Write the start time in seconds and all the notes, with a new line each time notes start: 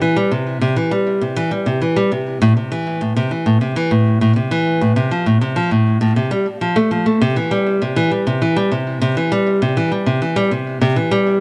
0.02 E3
0.16 G3
0.31 C3
0.61 C3
0.76 E3
0.91 G3
1.21 C3
1.36 E3
1.51 G3
1.66 C3
1.82 E3
1.96 G3
2.12 C3
2.42 A2
2.57 C3
2.72 E3
3.01 A2
3.16 C3
3.31 E3
3.46 A2
3.61 C3
3.76 E3
3.91 A2
4.21 A2
4.36 C3
4.51 E3
4.81 A2
4.96 C3
5.11 F3
5.26 A2
5.41 C3
5.56 F3
5.71 A2
6.01 A2
6.16 C3
6.31 G3
6.61 F3
6.76 A3
6.91 F3
7.06 A3
7.21 C3
7.36 E3
7.51 G3
7.82 C3
7.96 E3
8.11 G3
8.27 C3
8.42 E3
8.56 G3
8.71 C3
9.01 C3
9.17 E3
9.32 G3
9.62 C3
9.77 E3
9.92 G3
10.06 C3
10.22 E3
10.36 G3
10.51 C3
10.81 C3
10.96 E3
11.11 G3